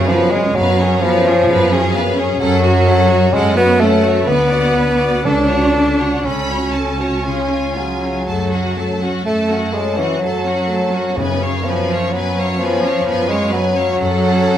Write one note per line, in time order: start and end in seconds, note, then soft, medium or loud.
0.00 0.45 F#2 medium
0.00 0.98 F#2 loud
0.00 2.40 F#2 medium
0.00 0.10 C#4 medium
0.00 0.11 G#4 medium
0.00 1.02 C#5 medium
0.08 0.33 F3 medium
0.08 1.94 C#4 medium
0.08 0.34 B4 medium
0.08 0.32 F5 medium
0.14 0.35 B3 medium
0.31 0.57 G#3 loud
0.31 0.56 G#3 medium
0.31 0.57 C#4 medium
0.31 0.56 G#4 medium
0.31 0.56 C#5 medium
0.56 1.37 F#2 medium
0.56 1.03 F#3 loud
0.56 1.02 F#3 medium
0.56 0.78 B3 medium
0.56 2.45 B4 medium
0.56 0.79 B4 medium
0.56 0.77 F5 medium
0.79 1.03 C#4 medium
0.79 1.04 G#4 medium
0.79 1.02 C#5 medium
1.02 1.94 F3 loud
1.02 1.92 F3 medium
1.02 1.26 B3 medium
1.02 1.26 B4 medium
1.02 3.79 C#5 medium
1.02 1.25 F5 medium
1.26 1.49 C#4 medium
1.26 1.50 G#4 medium
1.26 1.49 C#5 medium
1.48 2.29 F#2 medium
1.48 1.70 B3 medium
1.48 2.44 G#4 medium
1.48 1.71 B4 medium
1.48 1.70 F5 medium
1.71 1.95 C#4 medium
1.71 1.95 G#4 medium
1.71 1.94 C#5 medium
1.93 2.18 B3 medium
1.93 2.86 C#4 medium
1.93 2.18 B4 medium
1.93 2.17 F5 medium
2.16 2.41 C#4 medium
2.16 2.41 G#4 medium
2.16 2.40 C#5 medium
2.39 3.21 F#2 loud
2.39 4.32 F#2 medium
2.39 3.29 F#3 medium
2.39 3.36 F#3 loud
2.39 2.63 C#4 medium
2.39 2.63 A4 medium
2.39 2.62 F#5 medium
2.64 2.87 F#4 medium
2.64 2.88 C#5 medium
2.86 3.10 C#4 medium
2.86 3.10 A4 medium
2.86 3.11 F#5 medium
3.08 3.32 F#4 medium
3.08 3.33 F#4 medium
3.08 3.34 C#5 medium
3.32 4.16 F#2 medium
3.32 3.56 G#3 medium
3.32 3.56 G#3 loud
3.32 3.54 C#4 medium
3.32 4.32 A4 medium
3.32 3.55 A4 medium
3.36 3.57 F#5 medium
3.56 3.80 B3 medium
3.56 3.82 B3 loud
3.56 3.80 F#4 medium
3.60 3.82 C#5 medium
3.78 4.27 A3 medium
3.78 4.30 A3 loud
3.78 4.04 C#4 medium
3.78 4.03 A4 medium
3.78 4.32 C#5 medium
3.85 4.06 F#5 medium
4.01 4.26 F#4 medium
4.01 4.28 F#4 medium
4.09 4.30 C#5 medium
4.25 5.13 D2 medium
4.25 5.29 D3 medium
4.25 5.25 B3 medium
4.25 5.27 B3 loud
4.25 4.50 D4 medium
4.25 4.48 B4 medium
4.32 4.52 D5 medium
4.49 4.76 F#4 medium
4.49 4.75 D5 medium
4.55 4.77 F#5 medium
4.74 5.01 D4 medium
4.74 6.74 F#4 soft
4.74 4.99 B4 medium
4.74 5.29 B4 medium
4.74 5.01 D5 medium
4.98 5.25 F#4 medium
4.98 5.24 D5 medium
5.02 5.26 F#5 soft
5.23 6.13 C#2 medium
5.23 6.70 C#3 medium
5.23 7.25 C#3 medium
5.23 5.48 C#4 medium
5.23 6.22 D4 medium
5.23 6.26 D4 loud
5.23 5.47 A4 medium
5.28 5.50 A5 soft
5.49 5.75 F#4 soft
5.49 5.74 C#5 soft
5.49 5.76 F#5 soft
5.72 7.29 A3 soft
5.72 6.00 C#4 medium
5.72 5.98 A4 soft
5.72 6.00 A5 soft
5.98 6.24 F#4 soft
5.98 6.24 C#5 soft
5.98 6.25 F#5 medium
6.23 7.13 C#2 medium
6.23 7.76 C#4 medium
6.23 6.48 C#4 soft
6.23 7.76 C#4 medium
6.23 6.47 A4 soft
6.23 7.30 A4 soft
6.23 6.72 B5 medium
6.49 6.74 F#4 soft
6.49 6.75 C#5 soft
6.74 7.00 C#4 medium
6.74 7.30 F#4 soft
6.74 7.00 A4 soft
6.74 7.25 A5 medium
7.01 7.25 F#4 soft
7.01 7.26 C#5 soft
7.25 8.15 C#2 medium
7.25 8.31 C#3 medium
7.25 7.49 F4 soft
7.25 7.49 G#4 soft
7.25 8.27 G#5 medium
7.51 7.77 C#4 soft
7.51 7.76 F4 soft
7.77 9.25 F#3 medium
7.77 8.94 F#3 medium
7.77 8.31 F4 soft
7.77 8.02 F4 soft
7.77 8.31 G#4 soft
7.77 8.02 G#4 soft
8.03 8.28 C#4 soft
8.03 8.27 F4 soft
8.27 9.13 F#2 medium
8.27 11.18 F#2 medium
8.27 8.51 A3 medium
8.27 8.50 A4 medium
8.27 8.50 A5 medium
8.52 8.77 C#4 soft
8.52 8.76 F#4 medium
8.52 8.77 F#5 soft
8.77 9.01 A3 soft
8.77 10.69 C#4 soft
8.77 9.01 A4 soft
8.77 9.01 A5 medium
9.02 9.26 C#4 soft
9.02 9.26 F#4 soft
9.02 9.26 F#5 medium
9.25 10.10 F#2 medium
9.25 9.72 A3 medium
9.25 9.75 A3 medium
9.25 9.48 A3 medium
9.25 11.21 A4 medium
9.25 9.48 A4 medium
9.25 9.48 A5 medium
9.49 9.73 C#4 soft
9.49 9.74 F#4 soft
9.49 9.74 F#5 medium
9.73 9.97 G#3 medium
9.73 9.99 G#3 medium
9.73 9.97 A3 medium
9.73 9.98 A4 soft
9.73 12.60 C#5 medium
9.73 9.99 A5 medium
9.97 10.21 E3 medium
9.97 10.21 C#4 soft
9.97 10.21 F#5 soft
10.02 10.23 F#4 soft
10.19 11.06 F#2 medium
10.19 11.18 F#3 medium
10.19 11.17 F#3 medium
10.19 10.43 A3 medium
10.19 11.21 F#4 soft
10.19 10.44 A4 medium
10.24 10.45 A5 medium
10.45 10.69 C#4 soft
10.45 10.70 F#4 medium
10.45 10.70 F#5 soft
10.69 10.93 A3 medium
10.69 11.66 C#4 soft
10.69 10.94 A4 soft
10.69 10.95 A5 medium
10.93 11.17 C#4 medium
10.93 11.18 F#4 medium
10.93 11.18 F#5 soft
11.15 12.56 F#2 medium
11.15 12.02 F#2 medium
11.15 13.99 F#2 medium
11.15 11.66 C#3 medium
11.15 11.64 C#3 medium
11.15 11.39 B3 medium
11.21 11.41 B4 medium
11.21 11.42 G#5 soft
11.39 11.64 C#4 soft
11.39 11.66 C#5 soft
11.46 11.67 F5 soft
11.64 12.14 F3 medium
11.64 12.13 F3 medium
11.64 11.89 B3 medium
11.64 13.52 C#4 soft
11.69 11.91 B4 soft
11.69 11.91 G#5 medium
11.90 12.13 C#4 medium
11.90 12.14 C#5 medium
11.90 12.15 F5 medium
12.12 12.96 F#2 medium
12.12 12.60 F#3 medium
12.12 12.36 B3 medium
12.12 14.03 B4 medium
12.12 12.36 B4 medium
12.16 12.37 G#5 medium
12.38 12.61 C#4 medium
12.38 12.61 C#5 medium
12.38 12.61 F5 medium
12.58 13.30 F3 medium
12.58 12.84 B3 medium
12.58 14.58 C#5 medium
12.63 12.85 B4 medium
12.63 12.85 G#5 medium
12.84 13.07 C#4 medium
12.84 13.07 C#5 medium
12.84 13.09 F5 medium
13.06 13.88 F#2 medium
13.06 13.28 B3 medium
13.06 14.03 F4 medium
13.06 13.28 B4 medium
13.06 13.29 G#5 medium
13.29 13.52 G#3 medium
13.29 13.53 C#4 medium
13.29 13.52 C#5 medium
13.29 13.53 F5 medium
13.50 14.58 F#3 medium
13.50 14.58 F#3 loud
13.50 13.75 B3 medium
13.50 14.58 C#4 medium
13.50 13.74 B4 medium
13.56 13.77 G#5 medium
13.76 13.97 C#4 medium
13.76 13.99 C#5 medium
13.76 14.00 F5 medium
13.98 14.58 F#2 medium
13.98 14.58 C#4 medium
13.98 14.58 A4 medium
14.03 14.58 F#5 medium
14.46 14.58 F#4 medium
14.46 14.58 A4 soft